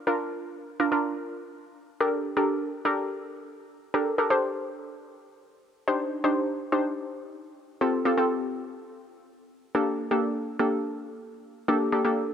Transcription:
0.07 0.61 D4 medium
0.07 0.61 F4 medium
0.07 0.61 A#4 loud
0.80 0.89 D4 medium
0.80 0.89 F4 medium
0.80 0.89 A#4 medium
0.92 1.64 D4 medium
0.92 1.64 F4 medium
0.92 1.64 A#4 medium
2.00 2.28 D4 medium
2.00 2.28 G4 medium
2.00 2.28 A4 medium
2.00 2.28 A#4 loud
2.37 2.73 D4 medium
2.37 2.73 G4 medium
2.37 2.73 A4 medium
2.37 2.73 A#4 loud
2.85 3.58 D4 medium
2.85 3.58 G4 medium
2.85 3.58 A4 medium
2.85 3.58 A#4 loud
3.94 4.12 D4 medium
3.94 4.12 G4 medium
3.94 4.12 A4 medium
3.94 4.12 A#4 loud
4.18 4.27 D4 medium
4.18 4.27 G4 medium
4.18 4.27 A4 medium
4.18 4.27 A#4 loud
4.30 5.03 D4 medium
4.30 5.03 G4 medium
4.30 5.03 A4 medium
4.30 5.03 C5 loud
5.88 6.15 D4 medium
5.88 6.15 D#4 medium
5.88 6.15 G4 medium
5.88 6.15 C5 loud
6.24 6.60 D4 medium
6.24 6.60 D#4 medium
6.24 6.60 G4 medium
6.24 6.60 C5 loud
6.72 7.45 D4 medium
6.72 7.45 D#4 medium
6.72 7.45 G4 medium
6.72 7.45 C5 loud
7.81 7.99 C4 medium
7.81 7.99 F4 medium
7.81 7.99 G4 medium
7.81 7.99 A4 loud
8.05 8.14 C4 medium
8.05 8.15 F4 medium
8.05 8.14 G4 medium
8.05 8.15 A4 loud
8.18 8.90 C4 medium
8.18 8.90 F4 medium
8.18 8.90 G4 medium
8.18 8.90 A4 loud
9.75 10.02 A#3 medium
9.75 10.02 D4 medium
9.75 10.02 G4 medium
9.75 10.02 A4 medium
10.11 10.47 A#3 medium
10.11 10.47 D4 medium
10.11 10.47 G4 medium
10.11 10.47 A4 loud
10.59 11.32 A#3 medium
10.59 11.32 D4 medium
10.59 11.32 G4 medium
10.59 11.32 A4 loud
11.68 11.86 A#3 medium
11.68 11.87 D4 medium
11.68 11.87 G4 medium
11.68 11.87 A4 loud
11.92 12.02 A#3 medium
11.92 12.02 D4 medium
11.92 12.02 G4 medium
11.92 12.02 A4 loud
12.05 12.34 A#3 medium
12.05 12.34 D4 medium
12.05 12.34 G4 medium
12.05 12.34 A4 loud

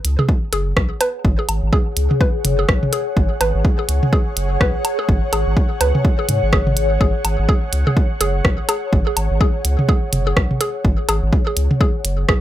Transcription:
0.00 12.41 G#4 medium
0.00 12.41 C#5 loud
0.00 12.41 F#5 medium
0.05 0.16 C#2 loud
0.05 closed hi-hat medium
0.19 0.25 G#4 medium
0.19 mid tom medium
0.29 kick loud
0.53 0.73 F#1 medium
0.53 0.58 G#4 loud
0.53 closed hi-hat medium
0.77 0.88 B1 medium
0.77 kick loud
0.77 cross-stick loud
1.01 1.09 B4 medium
1.01 closed hi-hat medium
1.01 low woodblock medium
1.25 1.36 G#1 loud
1.25 kick loud
1.39 1.45 G#4 medium
1.49 1.60 G#1 medium
1.49 closed hi-hat medium
1.49 low woodblock medium
1.63 1.71 G#1 loud
1.73 1.78 G#4 loud
1.73 kick loud
1.97 2.08 C#2 medium
1.97 closed hi-hat medium
2.11 mid tom loud
2.21 2.29 B4 loud
2.21 kick loud
2.45 2.65 F#1 medium
2.45 closed hi-hat medium
2.45 mid tom loud
2.59 2.65 G#4 medium
2.69 2.80 B1 loud
2.69 kick loud
2.69 cross-stick loud
2.83 mid tom loud
2.93 2.98 G#4 loud
2.93 closed hi-hat medium
3.17 3.28 G#1 loud
3.17 kick loud
3.41 3.52 G#1 medium
3.41 3.49 B4 loud
3.41 closed hi-hat loud
3.41 low woodblock medium
3.55 3.63 G#1 loud
3.65 kick loud
3.79 3.85 G#4 medium
3.89 4.00 C#2 medium
3.89 closed hi-hat loud
4.03 mid tom medium
4.13 4.18 G#4 loud
4.13 kick loud
4.37 4.57 F#1 medium
4.37 closed hi-hat medium
4.61 4.72 B1 loud
4.61 4.69 B4 loud
4.61 kick loud
4.61 cross-stick loud
4.85 closed hi-hat medium
4.85 low woodblock medium
4.99 5.05 G#4 medium
5.09 5.20 G#1 loud
5.09 kick loud
5.33 5.44 G#1 medium
5.33 5.38 G#4 loud
5.33 closed hi-hat medium
5.33 low woodblock medium
5.47 5.55 G#1 loud
5.57 kick loud
5.81 5.92 C#2 medium
5.81 5.89 B4 loud
5.81 closed hi-hat medium
5.81 low woodblock medium
5.95 mid tom medium
6.05 kick loud
6.19 6.25 G#4 medium
6.29 6.40 G#2 loud
6.29 closed hi-hat medium
6.29 mid tom medium
6.43 6.98 G#1 medium
6.53 6.58 G#4 loud
6.53 kick loud
6.53 cross-stick loud
6.67 mid tom medium
6.77 closed hi-hat medium
7.01 7.12 G#1 loud
7.01 7.06 G#4 loud
7.01 kick loud
7.25 7.36 G#1 medium
7.25 closed hi-hat medium
7.25 low woodblock medium
7.39 7.47 G#1 loud
7.49 7.54 G#4 loud
7.49 kick loud
7.73 7.84 C#2 loud
7.73 closed hi-hat medium
7.87 7.93 G#4 medium
7.87 mid tom medium
7.97 kick loud
8.21 8.41 F#1 medium
8.21 8.26 G#4 loud
8.21 closed hi-hat medium
8.45 8.56 B1 loud
8.45 kick loud
8.45 cross-stick loud
8.69 8.74 G#4 loud
8.69 closed hi-hat medium
8.69 low woodblock medium
8.93 9.04 G#1 loud
8.93 kick loud
9.07 9.13 G#4 medium
9.17 9.28 G#1 medium
9.17 closed hi-hat medium
9.17 low woodblock medium
9.31 9.39 G#1 loud
9.41 9.46 G#4 loud
9.41 kick loud
9.65 9.76 C#2 loud
9.65 closed hi-hat medium
9.79 mid tom medium
9.89 9.94 G#4 loud
9.89 kick loud
10.13 10.33 F#1 medium
10.13 closed hi-hat medium
10.13 mid tom medium
10.27 10.33 G#4 medium
10.37 10.48 B1 loud
10.37 kick loud
10.37 cross-stick loud
10.51 mid tom medium
10.61 10.66 G#4 loud
10.61 closed hi-hat medium
10.85 10.96 G#1 medium
10.85 kick loud
11.09 11.20 G#1 medium
11.09 11.14 G#4 loud
11.09 closed hi-hat medium
11.09 low woodblock medium
11.23 11.31 G#1 loud
11.33 kick loud
11.47 11.53 G#4 medium
11.57 11.68 C#2 medium
11.57 closed hi-hat medium
11.71 mid tom medium
11.81 11.86 G#4 loud
11.81 kick loud
12.05 12.25 F#1 medium
12.05 closed hi-hat medium
12.29 12.40 B1 loud
12.29 12.34 G#4 loud
12.29 kick loud
12.29 cross-stick loud

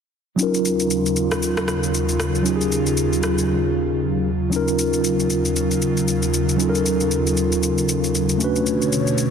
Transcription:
0.36 4.49 D#2 medium
0.36 4.49 C#3 medium
0.36 2.40 F#3 medium
0.36 4.49 F#3 medium
0.36 2.41 C#4 medium
0.36 2.42 D#4 medium
0.36 4.49 F4 medium
0.36 shaker medium
0.41 2.43 F4 medium
0.41 2.44 A#4 medium
0.54 shaker soft
0.65 shaker medium
0.80 shaker soft
0.91 shaker medium
1.06 shaker soft
1.16 shaker medium
1.32 cross-stick medium
1.32 shaker medium
1.43 shaker medium
1.57 cross-stick loud
1.57 shaker soft
1.68 cross-stick medium
1.68 shaker medium
1.83 shaker soft
1.94 shaker medium
2.09 shaker medium
2.20 cross-stick loud
2.20 shaker loud
2.35 shaker soft
2.43 4.22 F#3 medium
2.43 4.23 C#4 medium
2.43 4.23 D#4 medium
2.43 shaker medium
2.48 4.24 F4 medium
2.48 2.55 G4 medium
2.56 4.28 G#4 medium
2.61 shaker soft
2.72 shaker medium
2.87 shaker soft
2.97 shaker medium
3.13 shaker soft
3.23 cross-stick medium
3.23 shaker medium
3.38 shaker medium
4.50 8.37 D#2 medium
4.50 8.37 C#3 medium
4.50 6.54 F#3 medium
4.50 8.37 F#3 medium
4.50 6.55 C#4 medium
4.50 6.56 D#4 medium
4.50 8.37 F4 medium
4.50 shaker medium
4.55 6.57 F4 medium
4.55 6.57 A#4 medium
4.68 shaker soft
4.79 shaker medium
4.93 shaker medium
5.04 shaker medium
5.20 shaker soft
5.30 shaker medium
5.45 shaker medium
5.56 shaker medium
5.71 shaker medium
5.82 shaker medium
5.97 shaker soft
6.08 shaker medium
6.23 shaker medium
6.34 shaker loud
6.49 shaker soft
6.57 8.36 F#3 medium
6.57 8.36 C#4 medium
6.57 8.37 D#4 medium
6.57 shaker medium
6.62 8.38 F4 medium
6.62 6.69 A4 medium
6.69 8.42 A#4 medium
6.75 shaker soft
6.86 shaker medium
7.01 shaker soft
7.11 shaker medium
7.27 shaker soft
7.37 shaker medium
7.52 shaker medium
7.63 shaker medium
7.78 shaker soft
7.89 shaker medium
8.04 shaker soft
8.15 shaker medium
8.29 shaker medium
8.38 9.30 B2 medium
8.38 9.30 D3 medium
8.38 9.30 A3 medium
8.38 9.30 C#4 medium
8.38 9.30 D4 medium
8.38 9.30 C#5 medium
8.38 shaker loud
8.43 9.30 F#4 medium
8.43 9.30 B4 medium
8.56 shaker soft
8.67 shaker medium
8.82 shaker soft
8.93 shaker medium
9.07 shaker soft
9.18 shaker medium

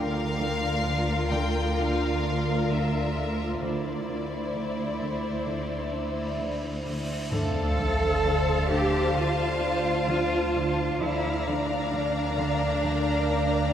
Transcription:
0.00 3.59 D2 soft
0.00 0.21 D3 medium
0.00 3.61 F4 soft
0.00 3.63 F4 soft
0.00 3.58 A#4 soft
0.00 3.59 A#4 soft
0.00 3.58 D5 soft
0.00 1.28 F5 medium
0.39 0.67 D3 soft
0.84 1.12 D3 soft
1.30 1.59 D3 soft
1.30 1.77 G5 medium
1.78 2.06 D3 soft
1.78 2.70 F5 soft
2.24 2.52 D4 soft
2.70 2.98 D3 soft
2.70 3.63 E5 soft
3.17 3.45 D3 soft
3.62 7.08 D2 soft
3.62 3.91 D3 soft
3.62 7.12 E4 soft
3.62 7.32 C5 soft
3.62 7.12 C5 soft
3.62 7.27 D5 soft
3.62 6.35 D5 soft
3.62 7.32 E5 soft
3.62 cymbal swell soft
4.09 4.37 D3 soft
4.56 4.83 D3 soft
5.00 5.28 D3 soft
5.46 5.74 D3 soft
5.92 6.20 D4 soft
6.39 6.67 D3 soft
6.85 7.13 D3 soft
7.31 10.97 D2 soft
7.31 7.59 D3 soft
7.31 8.66 A4 medium
7.31 10.97 C5 soft
7.31 10.98 C5 soft
7.31 10.98 D5 medium
7.31 10.97 F5 soft
7.31 10.98 F5 soft
7.31 10.97 A5 soft
7.31 sub drop soft
7.78 8.06 D3 soft
8.24 8.51 D3 soft
8.70 8.98 D3 soft
8.70 9.17 G4 soft
9.17 9.45 D3 soft
9.17 11.01 F4 soft
9.62 9.90 D4 soft
10.08 10.36 D3 soft
10.54 10.82 D3 soft
11.00 13.73 D2 soft
11.00 11.28 D3 soft
11.00 11.48 E4 soft
11.00 13.73 A#4 soft
11.00 13.73 D5 soft
11.00 13.73 F5 soft
11.00 13.73 G5 soft
11.00 13.73 A#5 soft
11.47 11.75 D3 soft
11.47 13.73 D4 soft
11.93 12.21 D3 soft
12.38 12.66 D3 soft
12.85 13.13 D3 soft
13.31 13.59 D4 soft

